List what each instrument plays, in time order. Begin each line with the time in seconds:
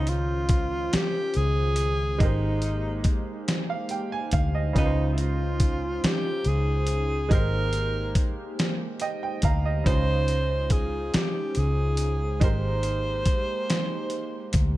Already playing: fingered electric bass C#2, grand piano C#3 C#4 D#4 F4 C5, analog synth pad D#3 G#3 C#4 F4 C5, tenor saxophone D#4
0.07 tenor saxophone F4, closed hi-hat
0.49 kick, closed hi-hat
0.93 tenor saxophone G4, muted fingered electric bass stroke, snare, closed hi-hat
1.34 fingered electric bass C#2, tenor saxophone G#4, closed hi-hat
1.76 closed hi-hat
2.18 fingered electric bass G#1, grand piano G#3 D#4 G4, analog synth pad A#3 D#4 G4 C5, tenor saxophone D#4, kick, closed hi-hat
2.23 grand piano A#4 C5
2.62 closed hi-hat
3.04 muted fingered electric bass stroke, kick, closed hi-hat
3.48 snare, closed hi-hat
3.70 grand piano F5
3.89 grand piano G5, closed hi-hat
4.12 grand piano G#5
4.31 fingered electric bass D2, grand piano F5, kick, closed hi-hat
4.55 grand piano D#5
4.73 fingered electric bass C#2, grand piano C#3 C#4 D#4, analog synth pad C#4 F4, kick, closed hi-hat
4.77 tenor saxophone D#4, grand piano F4 B4
4.85 grand piano C5
5.13 tenor saxophone E4
5.18 tenor saxophone F4, closed hi-hat
5.60 kick, closed hi-hat
6.04 tenor saxophone G4, muted fingered electric bass stroke, snare, closed hi-hat
6.45 fingered electric bass C#2, tenor saxophone G#4, closed hi-hat
6.87 closed hi-hat
7.29 fingered electric bass G#1, grand piano G#3 D#4 G4, analog synth pad G#3 A#3 G4, tenor saxophone A#4, kick, closed hi-hat
7.33 grand piano A#4 C5
7.73 closed hi-hat
8.15 muted fingered electric bass stroke, kick, closed hi-hat
8.59 snare, closed hi-hat
9.00 grand piano D#5 G5, closed hi-hat
9.23 grand piano G5
9.42 fingered electric bass D2, grand piano F5 A#5, kick, closed hi-hat
9.65 grand piano D#5
9.84 fingered electric bass C#2, grand piano C#3 C#4 D#4, analog synth pad C#4 D#4 F4, tenor saxophone C5, kick, closed hi-hat
9.88 grand piano F4 C5
10.28 closed hi-hat
10.70 tenor saxophone G#4, kick, closed hi-hat
11.14 tenor saxophone G4, muted fingered electric bass stroke, snare, closed hi-hat
11.55 fingered electric bass C#2, tenor saxophone G#4, closed hi-hat
11.97 closed hi-hat
12.40 fingered electric bass G#1, grand piano G#3 D#4 G4 A#4, analog synth pad A#3 G4, tenor saxophone C5, kick, closed hi-hat
12.45 grand piano C5
12.83 closed hi-hat
13.26 muted fingered electric bass stroke, kick, closed hi-hat
13.70 snare, closed hi-hat
14.10 closed hi-hat
14.53 fingered electric bass D2, kick, closed hi-hat